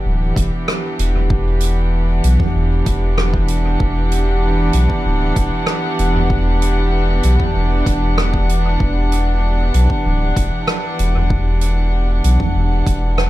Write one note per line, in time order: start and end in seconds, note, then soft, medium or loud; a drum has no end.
0.00 13.30 E3 medium
0.00 13.30 B3 medium
0.00 13.30 D4 medium
0.00 13.30 G4 medium
0.00 13.30 F#5 medium
0.05 0.33 D1 medium
0.36 0.50 E1 medium
0.36 kick loud
0.36 closed hi-hat medium
0.68 cross-stick medium
0.99 2.21 E1 loud
0.99 closed hi-hat medium
1.15 mid tom medium
1.30 kick loud
1.60 closed hi-hat medium
2.24 2.38 B1 medium
2.24 closed hi-hat medium
2.39 kick medium
2.39 mid tom medium
2.55 2.83 E1 loud
2.86 3.77 E1 medium
2.86 kick loud
2.86 closed hi-hat medium
3.18 cross-stick medium
3.34 kick loud
3.48 closed hi-hat medium
3.80 4.71 E1 loud
3.80 kick loud
4.12 closed hi-hat medium
4.73 4.88 B1 loud
4.73 closed hi-hat medium
4.90 kick medium
5.05 5.33 D1 medium
5.36 5.50 E1 medium
5.36 kick loud
5.36 closed hi-hat medium
5.67 cross-stick loud
5.99 7.21 E1 loud
5.99 closed hi-hat medium
6.16 mid tom medium
6.30 kick loud
6.62 closed hi-hat medium
7.23 7.38 B1 loud
7.23 closed hi-hat medium
7.39 kick medium
7.39 mid tom medium
7.55 7.83 E1 loud
7.86 8.77 E1 medium
7.86 kick loud
7.86 closed hi-hat medium
8.18 cross-stick loud
8.34 kick loud
8.49 closed hi-hat medium
8.80 9.71 E1 loud
8.80 kick loud
9.12 closed hi-hat medium
9.74 9.88 B1 medium
9.74 closed hi-hat medium
9.90 kick medium
10.05 10.33 D1 medium
10.36 10.50 E1 medium
10.36 kick loud
10.36 closed hi-hat medium
10.67 cross-stick loud
10.99 12.21 E1 loud
10.99 closed hi-hat medium
11.16 mid tom medium
11.30 kick loud
11.61 closed hi-hat medium
12.24 12.38 B1 loud
12.24 closed hi-hat medium
12.40 kick medium
12.40 mid tom medium
12.55 12.83 E1 loud
12.87 13.30 E1 medium
12.87 kick loud
12.87 closed hi-hat medium
13.18 cross-stick medium